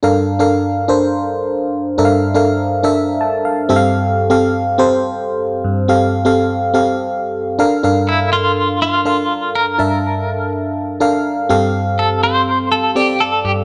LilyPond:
<<
  \new Staff \with { instrumentName = "FM electric piano" } { \time 4/4 \key bes \lydian \tempo 4 = 123 << { r1 | r2 r8 a''8 f''4 | r1 | r1 |
r1 | r1 | r1 | } \\ { <d' a' bes' f''>8. <d' a' bes' f''>4 <d' a' bes' c''>4.~ <d' a' bes' c''>16 r8 | <d' a' bes' e'' f''>8. <d' a' bes' f''>4 <d' a' bes' e''>4.~ <d' a' bes' e''>16 <c' g' a' e'' f''>8~ | <c' g' a' e'' f''>8. <c' g' a' f''>4 <c' g' a' c''>4.~ <c' g' a' c''>16 r8 | <c' g' a' f''>8. <c' g' a' f''>4 <c' g' a' f''>4.~ <c' g' a' f''>16 <d' a' bes' f''>8 |
<d' a' bes' f''>4.~ <d' a' bes' f''>16 r8. <d' a' bes' f''>4. | <d' bes' e'' a''>4.~ <d' bes' e'' a''>16 r8. <d' a' bes' f''>4 <c' g' a' f''>8~ | <c' g' a' f''>4~ <c' g' a' f''>16 r4 r16 <c' g' a' d''>4. | } >> }
  \new Staff \with { instrumentName = "FM electric piano" } { \clef bass \time 4/4 \key bes \lydian g,1 | g,2.~ g,8 g,8~ | g,2.~ g,8 g,8~ | g,2.~ g,8 r8 |
g,1 | g,2.~ g,8 g,8~ | g,2.~ g,8 g,8 | }
  \new Staff \with { instrumentName = "Clean electric guitar" } { \time 4/4 \key bes \lydian r1 | r1 | r1 | r1 |
r8 e'8 f'4 f'4. bes'8~ | bes'4. r2 r8 | r8 a'8 c''4 a'8 g'8 a'8 g'8 | }
>>